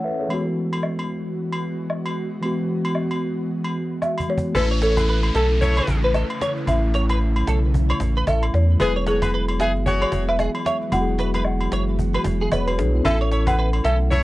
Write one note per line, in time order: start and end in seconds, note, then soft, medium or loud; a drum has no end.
0.00 0.25 E3 medium
0.00 4.51 E3 medium
0.00 0.26 A3 medium
0.00 0.26 C#4 medium
0.00 0.27 C#4 medium
0.00 0.28 E4 medium
0.00 0.26 A4 medium
0.00 0.20 C#5 medium
0.00 0.33 F#5 medium
0.00 downlifter medium
0.04 0.19 B4 medium
0.04 0.19 E5 medium
0.20 0.45 G#4 medium
0.20 0.45 C#5 medium
0.28 2.38 E3 medium
0.28 2.39 G#3 medium
0.28 4.51 G#3 medium
0.28 4.51 B3 medium
0.28 2.39 B3 medium
0.28 4.51 F#4 medium
0.28 high agogo medium
0.33 2.40 F#4 medium
0.72 high agogo medium
0.83 low woodblock medium
0.99 high agogo medium
1.52 high agogo medium
1.89 low woodblock medium
2.05 high agogo medium
2.41 4.24 E3 medium
2.41 4.25 G#3 medium
2.41 4.25 B3 medium
2.41 high agogo medium
2.45 4.26 F#4 medium
2.85 high agogo medium
2.95 low woodblock medium
3.11 high agogo medium
3.65 high agogo medium
4.02 4.30 E5 loud
4.02 cajon slap medium
4.02 low woodblock medium
4.18 cajon bass medium
4.18 high agogo medium
4.28 4.55 E3 medium
4.28 4.55 G#3 medium
4.28 4.56 B3 medium
4.28 4.56 F#4 medium
4.28 4.57 C#5 loud
4.38 cajon bass loud
4.53 5.31 A1 loud
4.53 8.76 C#3 medium
4.53 14.23 E3 medium
4.53 6.62 A3 medium
4.53 8.76 A3 medium
4.53 4.67 C#4 loud
4.53 6.64 C#4 medium
4.53 8.76 E4 medium
4.53 4.67 E4 loud
4.53 4.67 A4 loud
4.53 4.68 B4 loud
4.53 cajon bass loud
4.53 downlifter medium
4.53 high agogo medium
4.71 4.78 C#5 medium
4.82 4.94 E4 medium
4.82 4.94 A4 medium
4.82 5.35 A4 loud
4.82 4.94 C#5 medium
4.82 4.92 C#5 medium
4.82 cajon slap medium
4.97 5.06 E4 medium
4.97 5.06 G#4 medium
4.97 5.06 B4 medium
4.97 cajon bass medium
4.97 cajon slap medium
4.97 high agogo medium
5.08 5.19 B4 medium
5.08 cajon slap soft
5.23 cajon slap soft
5.23 high agogo medium
5.35 5.81 B1 medium
5.35 5.47 C#4 medium
5.35 5.47 E4 medium
5.35 5.47 A4 loud
5.35 5.45 A4 medium
5.35 6.06 A4 loud
5.35 cajon slap loud
5.50 cajon slap soft
5.61 6.01 E4 loud
5.61 6.01 A4 loud
5.61 6.01 C#5 loud
5.61 cajon bass medium
5.77 5.84 C#5 medium
5.77 cajon slap soft
5.77 high agogo medium
5.87 6.24 A1 medium
5.87 cajon bass loud
5.87 cajon slap loud
6.04 6.11 B4 medium
6.04 6.43 B4 loud
6.14 6.25 A4 medium
6.14 cajon slap medium
6.14 low woodblock medium
6.30 high agogo medium
6.41 6.51 C#5 medium
6.41 6.54 C#5 loud
6.41 cajon slap loud
6.57 cajon slap soft
6.65 7.43 A1 loud
6.65 8.75 A3 medium
6.65 8.76 C#4 medium
6.65 7.17 E5 medium
6.65 cajon bass loud
6.65 high agogo medium
6.70 8.77 E4 medium
6.94 7.05 C#5 medium
6.94 cajon slap medium
7.09 7.17 B4 medium
7.09 cajon slap medium
7.09 high agogo medium
7.21 cajon slap soft
7.36 cajon slap soft
7.36 high agogo medium
7.47 7.93 B1 medium
7.47 7.58 A4 medium
7.47 cajon slap loud
7.63 cajon slap soft
7.74 cajon bass loud
7.89 7.97 C#5 medium
7.89 high agogo medium
7.99 8.23 A1 medium
7.99 cajon bass loud
7.99 cajon slap loud
8.16 8.23 B4 medium
8.16 cajon slap soft
8.27 8.50 A1 loud
8.27 8.44 A4 medium
8.27 8.40 E5 medium
8.27 cajon bass loud
8.27 cajon slap loud
8.27 low woodblock medium
8.42 high agogo medium
8.54 8.76 E2 loud
8.54 8.81 C#5 medium
8.54 cajon slap loud
8.69 cajon slap soft
8.77 9.61 E1 loud
8.77 10.87 F#3 medium
8.77 10.88 G#3 medium
8.77 13.01 G#3 medium
8.77 10.88 B3 medium
8.77 8.92 B3 loud
8.77 13.01 B3 medium
8.77 8.92 E4 loud
8.77 10.89 E4 medium
8.77 13.01 F#4 medium
8.77 8.92 G#4 loud
8.77 9.08 B4 loud
8.77 cajon bass loud
8.77 high agogo medium
8.82 10.90 G#4 medium
8.96 9.03 C#5 medium
9.06 9.19 F#4 medium
9.06 9.62 G#4 loud
9.06 9.19 A4 medium
9.06 9.19 C#5 medium
9.06 9.17 C#5 medium
9.06 cajon slap medium
9.22 9.31 F#4 medium
9.22 9.31 G#4 medium
9.22 9.31 B4 medium
9.22 cajon bass medium
9.22 cajon slap medium
9.22 high agogo medium
9.33 9.44 B4 medium
9.33 cajon slap soft
9.48 cajon slap soft
9.48 high agogo medium
9.60 10.05 F#1 loud
9.60 9.72 B3 medium
9.60 9.72 E4 medium
9.60 9.72 G#4 loud
9.60 9.70 G#4 medium
9.60 10.28 E5 loud
9.60 cajon slap loud
9.75 cajon slap soft
9.86 10.26 F#4 loud
9.86 10.26 G#4 loud
9.86 10.26 C#5 loud
9.86 cajon bass loud
10.02 10.09 C#5 medium
10.02 high agogo medium
10.12 10.49 E1 loud
10.12 cajon bass loud
10.12 cajon slap loud
10.29 10.36 B4 medium
10.29 10.65 E5 loud
10.39 10.50 G#4 medium
10.39 cajon slap medium
10.39 low woodblock medium
10.55 cajon slap soft
10.55 high agogo medium
10.66 10.76 C#5 medium
10.66 10.94 E5 loud
10.66 cajon slap loud
10.82 cajon slap soft
10.90 11.68 E1 loud
10.90 13.00 F#3 medium
10.90 13.00 G#3 medium
10.90 12.48 B3 medium
10.90 12.49 E4 medium
10.90 11.42 F#5 loud
10.90 cajon bass loud
10.90 high agogo medium
10.95 11.01 F#4 medium
11.01 12.51 G#4 medium
11.08 cajon slap soft
11.19 11.29 B4 medium
11.19 cajon slap medium
11.34 11.42 B4 medium
11.34 cajon slap medium
11.34 high agogo medium
11.45 cajon slap soft
11.45 low woodblock medium
11.60 cajon slap soft
11.60 high agogo medium
11.72 12.18 F#1 loud
11.72 11.82 C#5 medium
11.72 cajon slap loud
11.87 cajon slap soft
11.98 cajon bass medium
12.14 12.22 B4 medium
12.14 high agogo medium
12.24 12.48 E1 loud
12.24 cajon bass loud
12.24 cajon slap loud
12.41 12.48 G#4 medium
12.51 12.80 E1 loud
12.51 12.67 G#4 medium
12.51 12.69 B4 medium
12.51 12.66 C#5 medium
12.51 cajon bass loud
12.51 cajon slap loud
12.51 low woodblock medium
12.67 12.78 F#4 medium
12.67 12.78 B4 medium
12.67 high agogo medium
12.78 13.01 B1 loud
12.78 12.93 D4 medium
12.78 12.93 G#4 medium
12.78 cajon slap loud
12.94 13.19 B3 medium
12.94 13.04 E4 medium
12.94 cajon slap soft
13.02 13.80 A1 loud
13.02 14.23 C#3 medium
13.02 14.23 A3 medium
13.02 14.23 C#4 medium
13.02 13.17 C#4 loud
13.02 13.17 E4 loud
13.02 14.23 E4 medium
13.02 13.17 A4 loud
13.02 13.48 E5 loud
13.02 cajon bass loud
13.02 high agogo medium
13.21 13.28 C#5 medium
13.31 13.43 E4 medium
13.31 13.43 A4 medium
13.31 13.43 C#5 loud
13.31 13.42 C#5 medium
13.31 cajon slap loud
13.46 13.55 E4 medium
13.46 13.55 G#4 medium
13.46 13.55 B4 medium
13.46 13.86 F#5 loud
13.46 cajon bass medium
13.46 cajon slap medium
13.46 high agogo medium
13.58 13.68 B4 medium
13.73 cajon slap soft
13.73 high agogo medium
13.84 14.23 B1 loud
13.84 13.97 C#4 medium
13.84 13.97 E4 medium
13.84 13.97 A4 medium
13.84 13.95 A4 medium
13.84 14.23 E5 loud
13.84 cajon slap loud
14.00 cajon slap soft
14.11 14.23 E4 loud
14.11 14.23 A4 loud
14.11 14.23 C#5 loud
14.11 cajon bass medium